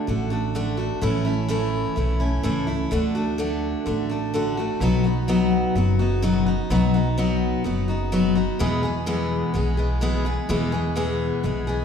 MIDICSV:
0, 0, Header, 1, 3, 480
1, 0, Start_track
1, 0, Key_signature, 3, "major"
1, 0, Tempo, 473560
1, 1036, Time_signature, 4, 2, 24, 8
1, 12010, End_track
2, 0, Start_track
2, 0, Title_t, "Steel-string acoustic guitar"
2, 0, Program_c, 0, 25
2, 73, Note_on_c, 0, 50, 60
2, 83, Note_on_c, 0, 57, 63
2, 88, Note_on_c, 0, 62, 70
2, 95, Note_on_c, 0, 66, 71
2, 294, Note_off_c, 0, 66, 0
2, 306, Note_off_c, 0, 62, 0
2, 306, Note_on_c, 0, 66, 59
2, 315, Note_off_c, 0, 50, 0
2, 318, Note_on_c, 0, 62, 52
2, 320, Note_off_c, 0, 57, 0
2, 332, Note_on_c, 0, 57, 50
2, 548, Note_off_c, 0, 57, 0
2, 551, Note_off_c, 0, 66, 0
2, 553, Note_off_c, 0, 62, 0
2, 555, Note_on_c, 0, 50, 81
2, 561, Note_on_c, 0, 57, 88
2, 565, Note_on_c, 0, 62, 92
2, 568, Note_on_c, 0, 66, 100
2, 771, Note_off_c, 0, 66, 0
2, 783, Note_on_c, 0, 66, 53
2, 785, Note_off_c, 0, 62, 0
2, 796, Note_off_c, 0, 50, 0
2, 796, Note_off_c, 0, 57, 0
2, 797, Note_on_c, 0, 62, 50
2, 808, Note_on_c, 0, 57, 51
2, 1028, Note_off_c, 0, 57, 0
2, 1029, Note_on_c, 0, 45, 82
2, 1030, Note_off_c, 0, 66, 0
2, 1036, Note_off_c, 0, 62, 0
2, 1036, Note_on_c, 0, 52, 85
2, 1040, Note_on_c, 0, 57, 82
2, 1045, Note_on_c, 0, 61, 102
2, 1047, Note_on_c, 0, 64, 93
2, 1251, Note_off_c, 0, 64, 0
2, 1264, Note_on_c, 0, 64, 63
2, 1266, Note_off_c, 0, 61, 0
2, 1272, Note_off_c, 0, 45, 0
2, 1276, Note_off_c, 0, 52, 0
2, 1278, Note_off_c, 0, 57, 0
2, 1278, Note_on_c, 0, 61, 48
2, 1288, Note_on_c, 0, 57, 47
2, 1505, Note_off_c, 0, 57, 0
2, 1505, Note_on_c, 0, 45, 93
2, 1508, Note_off_c, 0, 61, 0
2, 1510, Note_off_c, 0, 64, 0
2, 1512, Note_on_c, 0, 52, 92
2, 1517, Note_on_c, 0, 57, 100
2, 1520, Note_on_c, 0, 61, 81
2, 1526, Note_on_c, 0, 64, 97
2, 1973, Note_off_c, 0, 52, 0
2, 1985, Note_on_c, 0, 52, 61
2, 1990, Note_off_c, 0, 45, 0
2, 1991, Note_off_c, 0, 61, 0
2, 1992, Note_off_c, 0, 57, 0
2, 1996, Note_on_c, 0, 57, 64
2, 1998, Note_off_c, 0, 64, 0
2, 2003, Note_on_c, 0, 61, 72
2, 2011, Note_on_c, 0, 64, 70
2, 2214, Note_off_c, 0, 64, 0
2, 2225, Note_off_c, 0, 61, 0
2, 2227, Note_on_c, 0, 64, 58
2, 2230, Note_off_c, 0, 52, 0
2, 2236, Note_off_c, 0, 57, 0
2, 2237, Note_on_c, 0, 61, 56
2, 2250, Note_on_c, 0, 57, 48
2, 2463, Note_off_c, 0, 57, 0
2, 2467, Note_on_c, 0, 45, 85
2, 2468, Note_off_c, 0, 61, 0
2, 2469, Note_on_c, 0, 52, 78
2, 2471, Note_off_c, 0, 64, 0
2, 2475, Note_on_c, 0, 57, 92
2, 2480, Note_on_c, 0, 61, 93
2, 2483, Note_on_c, 0, 64, 86
2, 2693, Note_off_c, 0, 64, 0
2, 2705, Note_off_c, 0, 61, 0
2, 2705, Note_on_c, 0, 64, 62
2, 2711, Note_off_c, 0, 45, 0
2, 2712, Note_off_c, 0, 52, 0
2, 2715, Note_off_c, 0, 57, 0
2, 2717, Note_on_c, 0, 61, 53
2, 2732, Note_on_c, 0, 57, 52
2, 2944, Note_off_c, 0, 57, 0
2, 2948, Note_on_c, 0, 50, 87
2, 2950, Note_off_c, 0, 64, 0
2, 2956, Note_off_c, 0, 61, 0
2, 2956, Note_on_c, 0, 57, 81
2, 2964, Note_on_c, 0, 62, 97
2, 2968, Note_on_c, 0, 66, 105
2, 3179, Note_off_c, 0, 66, 0
2, 3188, Note_off_c, 0, 62, 0
2, 3191, Note_on_c, 0, 66, 59
2, 3192, Note_off_c, 0, 50, 0
2, 3195, Note_off_c, 0, 57, 0
2, 3200, Note_on_c, 0, 62, 58
2, 3213, Note_on_c, 0, 57, 52
2, 3423, Note_off_c, 0, 57, 0
2, 3428, Note_on_c, 0, 50, 87
2, 3429, Note_off_c, 0, 62, 0
2, 3433, Note_off_c, 0, 66, 0
2, 3435, Note_on_c, 0, 57, 84
2, 3441, Note_on_c, 0, 62, 99
2, 3446, Note_on_c, 0, 66, 92
2, 3897, Note_off_c, 0, 50, 0
2, 3906, Note_off_c, 0, 57, 0
2, 3909, Note_on_c, 0, 50, 67
2, 3915, Note_off_c, 0, 62, 0
2, 3918, Note_on_c, 0, 57, 74
2, 3927, Note_on_c, 0, 62, 71
2, 3932, Note_off_c, 0, 66, 0
2, 3936, Note_on_c, 0, 66, 74
2, 4138, Note_off_c, 0, 66, 0
2, 4150, Note_on_c, 0, 66, 59
2, 4152, Note_off_c, 0, 50, 0
2, 4155, Note_off_c, 0, 62, 0
2, 4156, Note_off_c, 0, 57, 0
2, 4167, Note_on_c, 0, 62, 50
2, 4177, Note_on_c, 0, 57, 48
2, 4390, Note_off_c, 0, 57, 0
2, 4392, Note_off_c, 0, 66, 0
2, 4395, Note_on_c, 0, 50, 93
2, 4397, Note_off_c, 0, 62, 0
2, 4402, Note_on_c, 0, 57, 81
2, 4409, Note_on_c, 0, 62, 88
2, 4415, Note_on_c, 0, 66, 89
2, 4623, Note_off_c, 0, 66, 0
2, 4635, Note_off_c, 0, 50, 0
2, 4635, Note_on_c, 0, 66, 62
2, 4638, Note_off_c, 0, 57, 0
2, 4639, Note_off_c, 0, 62, 0
2, 4651, Note_on_c, 0, 62, 58
2, 4660, Note_on_c, 0, 57, 49
2, 4874, Note_off_c, 0, 66, 0
2, 4877, Note_on_c, 0, 47, 89
2, 4883, Note_off_c, 0, 57, 0
2, 4883, Note_off_c, 0, 62, 0
2, 4884, Note_on_c, 0, 54, 89
2, 4887, Note_on_c, 0, 59, 100
2, 4890, Note_on_c, 0, 63, 91
2, 4895, Note_on_c, 0, 66, 100
2, 5097, Note_off_c, 0, 66, 0
2, 5109, Note_on_c, 0, 66, 61
2, 5110, Note_off_c, 0, 63, 0
2, 5116, Note_off_c, 0, 47, 0
2, 5119, Note_off_c, 0, 54, 0
2, 5121, Note_off_c, 0, 59, 0
2, 5122, Note_on_c, 0, 63, 52
2, 5135, Note_on_c, 0, 59, 52
2, 5349, Note_off_c, 0, 59, 0
2, 5351, Note_on_c, 0, 47, 82
2, 5352, Note_off_c, 0, 66, 0
2, 5353, Note_off_c, 0, 63, 0
2, 5356, Note_on_c, 0, 54, 89
2, 5361, Note_on_c, 0, 59, 97
2, 5366, Note_on_c, 0, 63, 87
2, 5367, Note_on_c, 0, 66, 99
2, 5821, Note_off_c, 0, 54, 0
2, 5832, Note_off_c, 0, 47, 0
2, 5833, Note_on_c, 0, 54, 69
2, 5839, Note_off_c, 0, 59, 0
2, 5840, Note_off_c, 0, 63, 0
2, 5841, Note_off_c, 0, 66, 0
2, 5843, Note_on_c, 0, 59, 65
2, 5852, Note_on_c, 0, 63, 68
2, 5858, Note_on_c, 0, 66, 78
2, 6061, Note_off_c, 0, 66, 0
2, 6073, Note_on_c, 0, 66, 66
2, 6074, Note_off_c, 0, 54, 0
2, 6074, Note_off_c, 0, 63, 0
2, 6079, Note_off_c, 0, 59, 0
2, 6086, Note_on_c, 0, 63, 59
2, 6099, Note_on_c, 0, 59, 55
2, 6304, Note_off_c, 0, 59, 0
2, 6309, Note_off_c, 0, 63, 0
2, 6309, Note_on_c, 0, 47, 99
2, 6313, Note_on_c, 0, 54, 84
2, 6314, Note_off_c, 0, 66, 0
2, 6316, Note_on_c, 0, 59, 86
2, 6321, Note_on_c, 0, 63, 98
2, 6328, Note_on_c, 0, 66, 95
2, 6539, Note_off_c, 0, 66, 0
2, 6551, Note_on_c, 0, 66, 62
2, 6552, Note_off_c, 0, 47, 0
2, 6554, Note_off_c, 0, 54, 0
2, 6554, Note_off_c, 0, 63, 0
2, 6555, Note_off_c, 0, 59, 0
2, 6566, Note_on_c, 0, 63, 57
2, 6575, Note_on_c, 0, 59, 49
2, 6791, Note_off_c, 0, 59, 0
2, 6793, Note_off_c, 0, 66, 0
2, 6794, Note_on_c, 0, 47, 86
2, 6796, Note_off_c, 0, 63, 0
2, 6798, Note_on_c, 0, 54, 91
2, 6803, Note_on_c, 0, 59, 96
2, 6808, Note_on_c, 0, 63, 101
2, 6810, Note_on_c, 0, 66, 103
2, 7023, Note_off_c, 0, 66, 0
2, 7034, Note_off_c, 0, 47, 0
2, 7035, Note_off_c, 0, 63, 0
2, 7035, Note_on_c, 0, 66, 66
2, 7036, Note_off_c, 0, 54, 0
2, 7039, Note_off_c, 0, 59, 0
2, 7047, Note_on_c, 0, 63, 59
2, 7061, Note_on_c, 0, 59, 50
2, 7269, Note_off_c, 0, 59, 0
2, 7273, Note_off_c, 0, 63, 0
2, 7273, Note_on_c, 0, 47, 86
2, 7274, Note_off_c, 0, 66, 0
2, 7278, Note_on_c, 0, 54, 86
2, 7281, Note_on_c, 0, 59, 89
2, 7286, Note_on_c, 0, 63, 92
2, 7289, Note_on_c, 0, 66, 91
2, 7734, Note_off_c, 0, 54, 0
2, 7746, Note_on_c, 0, 54, 66
2, 7753, Note_off_c, 0, 59, 0
2, 7753, Note_off_c, 0, 63, 0
2, 7754, Note_off_c, 0, 47, 0
2, 7757, Note_on_c, 0, 59, 67
2, 7759, Note_off_c, 0, 66, 0
2, 7765, Note_on_c, 0, 63, 71
2, 7771, Note_on_c, 0, 66, 69
2, 7975, Note_off_c, 0, 66, 0
2, 7987, Note_off_c, 0, 63, 0
2, 7987, Note_on_c, 0, 66, 57
2, 7990, Note_off_c, 0, 54, 0
2, 7995, Note_off_c, 0, 59, 0
2, 8000, Note_on_c, 0, 63, 54
2, 8013, Note_on_c, 0, 59, 50
2, 8225, Note_off_c, 0, 59, 0
2, 8230, Note_on_c, 0, 47, 83
2, 8231, Note_off_c, 0, 66, 0
2, 8233, Note_off_c, 0, 63, 0
2, 8233, Note_on_c, 0, 54, 92
2, 8238, Note_on_c, 0, 59, 85
2, 8245, Note_on_c, 0, 63, 95
2, 8246, Note_on_c, 0, 66, 94
2, 8455, Note_off_c, 0, 66, 0
2, 8467, Note_off_c, 0, 63, 0
2, 8467, Note_on_c, 0, 66, 61
2, 8472, Note_off_c, 0, 47, 0
2, 8474, Note_off_c, 0, 54, 0
2, 8476, Note_off_c, 0, 59, 0
2, 8479, Note_on_c, 0, 63, 53
2, 8490, Note_on_c, 0, 59, 49
2, 8710, Note_on_c, 0, 40, 90
2, 8711, Note_off_c, 0, 59, 0
2, 8711, Note_off_c, 0, 66, 0
2, 8715, Note_on_c, 0, 47, 84
2, 8717, Note_off_c, 0, 63, 0
2, 8719, Note_on_c, 0, 52, 99
2, 8720, Note_on_c, 0, 56, 102
2, 8723, Note_on_c, 0, 59, 88
2, 8726, Note_on_c, 0, 68, 93
2, 8936, Note_off_c, 0, 68, 0
2, 8948, Note_on_c, 0, 68, 61
2, 8949, Note_off_c, 0, 59, 0
2, 8952, Note_off_c, 0, 40, 0
2, 8955, Note_off_c, 0, 47, 0
2, 8957, Note_off_c, 0, 52, 0
2, 8957, Note_off_c, 0, 56, 0
2, 8962, Note_on_c, 0, 59, 60
2, 8970, Note_on_c, 0, 56, 53
2, 8976, Note_on_c, 0, 52, 46
2, 9181, Note_off_c, 0, 52, 0
2, 9184, Note_off_c, 0, 56, 0
2, 9186, Note_off_c, 0, 59, 0
2, 9187, Note_on_c, 0, 40, 88
2, 9191, Note_off_c, 0, 68, 0
2, 9192, Note_on_c, 0, 47, 89
2, 9193, Note_on_c, 0, 52, 93
2, 9196, Note_on_c, 0, 56, 96
2, 9198, Note_on_c, 0, 59, 90
2, 9203, Note_on_c, 0, 68, 92
2, 9654, Note_off_c, 0, 52, 0
2, 9665, Note_off_c, 0, 56, 0
2, 9666, Note_on_c, 0, 52, 70
2, 9671, Note_off_c, 0, 40, 0
2, 9671, Note_off_c, 0, 59, 0
2, 9673, Note_off_c, 0, 47, 0
2, 9677, Note_on_c, 0, 56, 71
2, 9679, Note_off_c, 0, 68, 0
2, 9683, Note_on_c, 0, 59, 76
2, 9692, Note_on_c, 0, 68, 71
2, 9893, Note_off_c, 0, 68, 0
2, 9904, Note_off_c, 0, 59, 0
2, 9905, Note_on_c, 0, 68, 60
2, 9910, Note_off_c, 0, 52, 0
2, 9910, Note_off_c, 0, 56, 0
2, 9916, Note_on_c, 0, 59, 51
2, 9923, Note_on_c, 0, 56, 55
2, 9928, Note_on_c, 0, 52, 47
2, 10143, Note_off_c, 0, 52, 0
2, 10144, Note_off_c, 0, 56, 0
2, 10147, Note_on_c, 0, 40, 80
2, 10149, Note_on_c, 0, 47, 89
2, 10150, Note_off_c, 0, 59, 0
2, 10150, Note_off_c, 0, 68, 0
2, 10155, Note_on_c, 0, 52, 79
2, 10156, Note_on_c, 0, 56, 88
2, 10162, Note_on_c, 0, 59, 95
2, 10163, Note_on_c, 0, 68, 96
2, 10374, Note_off_c, 0, 68, 0
2, 10385, Note_off_c, 0, 59, 0
2, 10386, Note_on_c, 0, 68, 62
2, 10389, Note_off_c, 0, 56, 0
2, 10391, Note_off_c, 0, 40, 0
2, 10392, Note_off_c, 0, 47, 0
2, 10395, Note_off_c, 0, 52, 0
2, 10397, Note_on_c, 0, 59, 59
2, 10402, Note_on_c, 0, 56, 57
2, 10411, Note_on_c, 0, 52, 50
2, 10628, Note_off_c, 0, 52, 0
2, 10629, Note_off_c, 0, 56, 0
2, 10630, Note_off_c, 0, 68, 0
2, 10632, Note_on_c, 0, 40, 91
2, 10633, Note_off_c, 0, 59, 0
2, 10635, Note_on_c, 0, 47, 81
2, 10640, Note_on_c, 0, 52, 98
2, 10641, Note_on_c, 0, 56, 98
2, 10645, Note_on_c, 0, 59, 95
2, 10647, Note_on_c, 0, 68, 107
2, 10854, Note_off_c, 0, 68, 0
2, 10867, Note_off_c, 0, 59, 0
2, 10867, Note_on_c, 0, 68, 65
2, 10873, Note_off_c, 0, 40, 0
2, 10873, Note_off_c, 0, 56, 0
2, 10875, Note_off_c, 0, 47, 0
2, 10877, Note_off_c, 0, 52, 0
2, 10879, Note_on_c, 0, 59, 58
2, 10885, Note_on_c, 0, 56, 54
2, 10891, Note_on_c, 0, 52, 52
2, 11103, Note_off_c, 0, 52, 0
2, 11104, Note_off_c, 0, 56, 0
2, 11105, Note_on_c, 0, 40, 82
2, 11107, Note_off_c, 0, 59, 0
2, 11111, Note_off_c, 0, 68, 0
2, 11111, Note_on_c, 0, 47, 82
2, 11115, Note_on_c, 0, 52, 82
2, 11116, Note_on_c, 0, 56, 97
2, 11119, Note_on_c, 0, 59, 100
2, 11124, Note_on_c, 0, 68, 106
2, 11578, Note_off_c, 0, 52, 0
2, 11585, Note_off_c, 0, 56, 0
2, 11590, Note_off_c, 0, 40, 0
2, 11590, Note_on_c, 0, 52, 62
2, 11593, Note_off_c, 0, 47, 0
2, 11595, Note_off_c, 0, 59, 0
2, 11597, Note_on_c, 0, 56, 70
2, 11599, Note_off_c, 0, 68, 0
2, 11607, Note_on_c, 0, 59, 69
2, 11613, Note_on_c, 0, 68, 72
2, 11817, Note_off_c, 0, 68, 0
2, 11827, Note_off_c, 0, 59, 0
2, 11830, Note_on_c, 0, 68, 63
2, 11832, Note_off_c, 0, 52, 0
2, 11836, Note_off_c, 0, 56, 0
2, 11839, Note_on_c, 0, 59, 60
2, 11847, Note_on_c, 0, 56, 52
2, 11854, Note_on_c, 0, 52, 53
2, 12010, Note_off_c, 0, 52, 0
2, 12010, Note_off_c, 0, 56, 0
2, 12010, Note_off_c, 0, 59, 0
2, 12010, Note_off_c, 0, 68, 0
2, 12010, End_track
3, 0, Start_track
3, 0, Title_t, "Upright bass"
3, 0, Program_c, 1, 32
3, 81, Note_on_c, 1, 33, 90
3, 903, Note_off_c, 1, 33, 0
3, 1034, Note_on_c, 1, 33, 98
3, 1859, Note_off_c, 1, 33, 0
3, 1997, Note_on_c, 1, 35, 88
3, 2404, Note_off_c, 1, 35, 0
3, 2475, Note_on_c, 1, 37, 81
3, 2883, Note_off_c, 1, 37, 0
3, 2955, Note_on_c, 1, 38, 97
3, 3779, Note_off_c, 1, 38, 0
3, 3915, Note_on_c, 1, 33, 84
3, 4739, Note_off_c, 1, 33, 0
3, 4867, Note_on_c, 1, 35, 96
3, 5695, Note_off_c, 1, 35, 0
3, 5830, Note_on_c, 1, 30, 96
3, 6657, Note_off_c, 1, 30, 0
3, 6791, Note_on_c, 1, 35, 104
3, 7617, Note_off_c, 1, 35, 0
3, 7756, Note_on_c, 1, 30, 82
3, 8580, Note_off_c, 1, 30, 0
3, 8719, Note_on_c, 1, 40, 95
3, 9542, Note_off_c, 1, 40, 0
3, 9675, Note_on_c, 1, 35, 88
3, 10500, Note_off_c, 1, 35, 0
3, 10635, Note_on_c, 1, 40, 104
3, 11460, Note_off_c, 1, 40, 0
3, 11597, Note_on_c, 1, 35, 86
3, 12010, Note_off_c, 1, 35, 0
3, 12010, End_track
0, 0, End_of_file